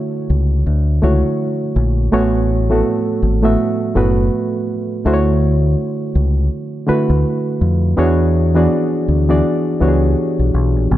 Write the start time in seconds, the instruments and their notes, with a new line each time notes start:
Already playing: reed electric piano D3 A3 E4 F#4 C#5 E5
0.30 fingered electric bass C#2
0.67 fingered electric bass D2
1.02 fingered electric bass C#2, reed electric piano D3 A3 E4 F#4 C#5
1.76 fingered electric bass A#1
2.12 fingered electric bass A1, reed electric piano A2 A3 B3 F#4 C#5
2.70 reed electric piano A2 A3 B3 F#4 A4
3.22 fingered electric bass G#1
3.43 reed electric piano A2 A3 B3 F#4 E5
3.95 fingered electric bass F#1, reed electric piano A2 A3 B3 F#4 B4
5.05 fingered electric bass D2, reed electric piano D3 A3 E4 F#4 C5
5.14 reed electric piano C#5
6.15 fingered electric bass C#2
6.87 reed electric piano D3 A3 E4 F#4 B4, muted fingered electric bass stroke
7.10 fingered electric bass D2
7.61 fingered electric bass F2
7.97 fingered electric bass E2, reed electric piano E3 B3 D4 F#4 G#4 C#5
8.55 reed electric piano E3 B3 D4 F#4 G#4 D5
9.08 fingered electric bass D2
9.29 reed electric piano E3 B3 D4 F#4 G#4 D5
9.80 fingered electric bass C#2, reed electric piano E3 B3 D4 F#4 G4 C#5
9.88 reed electric piano G#4
10.39 fingered electric bass B1
10.54 fingered electric bass B1
10.76 fingered electric bass A#1
10.91 fingered electric bass A1, reed electric piano C#3 F#3 B3